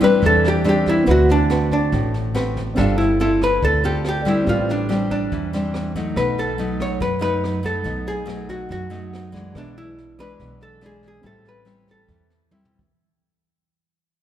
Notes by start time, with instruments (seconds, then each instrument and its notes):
Already playing: upright bass A1, nylon-string guitar A2, grand piano C4 G4 B4 D5
0.01 nylon-string guitar G3 C4 D4, hollow-body jazz guitar B4, kick, cross-stick, snare
0.22 upright bass E2, nylon-string guitar E3, kick, snare
0.26 hollow-body jazz guitar A4
0.44 hollow-body jazz guitar G4, snare
0.64 nylon-string guitar G3 C4 D4, cross-stick, snare
0.69 hollow-body jazz guitar G4
0.86 hollow-body jazz guitar E4, kick, snare
1.04 upright bass D2, nylon-string guitar D3 C4 F#4 B4, grand piano C4 F#4, kick, snare
1.08 hollow-body jazz guitar F#4, grand piano B4 E5
1.29 hollow-body jazz guitar D4, snare
1.50 nylon-string guitar C4 F#4 B4, cross-stick, snare
1.71 hollow-body jazz guitar D4, kick, snare
1.92 upright bass A1, nylon-string guitar A2, kick, snare
2.14 snare
2.34 nylon-string guitar C4 F#4 B4, cross-stick, snare
2.56 kick, snare
2.74 upright bass G1, nylon-string guitar G3 C4 F4 A4, grand piano C4 G4, hollow-body jazz guitar D4, kick, cross-stick, snare
2.79 grand piano A4 F5
2.98 hollow-body jazz guitar E4, snare
3.20 nylon-string guitar C4 F4 A4, hollow-body jazz guitar E4, snare
3.41 hollow-body jazz guitar B4, kick, cross-stick, snare
3.62 upright bass D2, nylon-string guitar D3, hollow-body jazz guitar A4, kick, snare
3.84 nylon-string guitar C4 F4 A4, hollow-body jazz guitar G4, snare
4.05 hollow-body jazz guitar G4, cross-stick, snare
4.25 nylon-string guitar G3 C4 D4, hollow-body jazz guitar E4, kick, snare
4.44 upright bass A1, nylon-string guitar A2, grand piano C4 G4 B4, kick, snare
4.49 hollow-body jazz guitar F4, grand piano D5
4.69 hollow-body jazz guitar D4, snare
4.89 nylon-string guitar G3 C4 D4, cross-stick, snare
5.11 hollow-body jazz guitar D4, kick, snare
5.32 upright bass E2, nylon-string guitar E3, kick, snare
5.53 nylon-string guitar G3 C4 D4, snare
5.74 cross-stick, snare
5.95 nylon-string guitar F#3 A3 D#4, kick, snare
6.14 upright bass B1, nylon-string guitar B2, grand piano A3 D#4, hollow-body jazz guitar B4, kick, cross-stick, snare
6.18 grand piano B4 F#5
6.38 hollow-body jazz guitar A4, snare
6.58 nylon-string guitar F#3 A3 D#4, snare
6.80 hollow-body jazz guitar C#5, kick, cross-stick, snare
7.00 nylon-string guitar F#2, upright bass F#2, hollow-body jazz guitar B4, kick, snare
7.19 nylon-string guitar F#3 A3 D#4, hollow-body jazz guitar B4, snare
7.44 cross-stick, snare
7.63 nylon-string guitar F#3 A3 D#4, hollow-body jazz guitar A4, kick, snare
7.84 upright bass B1, nylon-string guitar B2 F#3 A3 D#4, kick, snare
8.07 hollow-body jazz guitar G#4, snare
8.26 nylon-string guitar F#3 A3 D#4, cross-stick, snare
8.49 hollow-body jazz guitar F#4, kick, snare
8.69 nylon-string guitar F#2, upright bass F#2, hollow-body jazz guitar F#4, kick, snare
8.90 nylon-string guitar F#3 A3 D#4, snare
9.13 cross-stick, snare
9.32 nylon-string guitar E3 G#3 D4, kick, snare
9.52 upright bass B1, nylon-string guitar B2, grand piano D4 G#4 B4, kick, cross-stick, snare
9.58 hollow-body jazz guitar D4, grand piano E5
9.77 hollow-body jazz guitar E4, snare
9.98 snare
10.19 nylon-string guitar E3 G#3 D4, hollow-body jazz guitar B4, kick, cross-stick, snare
10.39 upright bass B1, nylon-string guitar B2, kick, snare
10.61 hollow-body jazz guitar A4, snare
10.81 nylon-string guitar E3 G#3 D4, cross-stick, snare
10.86 hollow-body jazz guitar G#4
11.03 kick, snare
11.08 hollow-body jazz guitar G#4
11.21 upright bass A1, nylon-string guitar A2 G3 C4 E4, grand piano C4 G4, kick, snare
11.25 grand piano A4 E5, hollow-body jazz guitar A4
11.45 hollow-body jazz guitar B4, snare
11.65 nylon-string guitar G3 C4 E4, cross-stick, snare
11.88 hollow-body jazz guitar A4, kick, snare
12.08 upright bass E2, nylon-string guitar E3, kick, snare
12.30 snare
12.51 nylon-string guitar G3 C4 E4, high tom
12.65 mid tom
12.79 kick